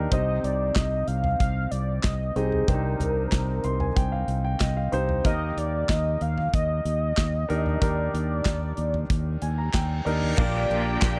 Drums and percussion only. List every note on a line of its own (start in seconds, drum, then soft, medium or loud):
0.12 kick loud
0.12 closed hi-hat medium
0.44 closed hi-hat medium
0.76 kick medium
0.76 snare loud
0.76 clap medium
0.76 closed hi-hat medium
1.08 closed hi-hat medium
1.24 floor tom medium
1.40 kick medium
1.40 closed hi-hat medium
1.72 closed hi-hat medium
2.03 kick medium
2.03 snare medium
2.03 clap medium
2.03 closed hi-hat medium
2.36 closed hi-hat medium
2.52 floor tom soft
2.68 kick loud
2.68 closed hi-hat medium
3.00 closed hi-hat medium
3.00 floor tom medium
3.32 kick medium
3.32 snare loud
3.32 clap medium
3.32 closed hi-hat medium
3.64 closed hi-hat medium
3.80 floor tom medium
3.97 kick loud
3.97 closed hi-hat medium
4.28 closed hi-hat medium
4.60 kick medium
4.60 snare loud
4.60 clap medium
4.60 closed hi-hat medium
4.93 closed hi-hat medium
5.09 floor tom soft
5.25 kick loud
5.25 closed hi-hat medium
5.58 closed hi-hat medium
5.89 kick medium
5.89 snare medium
5.89 clap medium
5.89 closed hi-hat medium
6.21 closed hi-hat medium
6.38 floor tom medium
6.54 kick loud
6.54 closed hi-hat medium
6.86 closed hi-hat medium
7.17 kick medium
7.17 snare medium
7.17 clap medium
7.17 closed hi-hat medium
7.50 closed hi-hat medium
7.66 floor tom soft
7.82 kick loud
7.82 closed hi-hat medium
8.15 closed hi-hat medium
8.45 kick medium
8.45 snare medium
8.45 clap medium
8.45 closed hi-hat medium
8.77 closed hi-hat medium
8.94 floor tom medium
9.10 kick loud
9.10 closed hi-hat medium
9.42 closed hi-hat medium
9.73 kick medium
9.73 snare medium
9.73 clap medium
9.73 closed hi-hat medium
10.07 closed hi-hat medium
10.22 floor tom soft
10.38 kick loud
10.38 crash loud
10.71 ride medium
11.02 kick loud
11.02 snare loud
11.02 clap medium
11.02 ride medium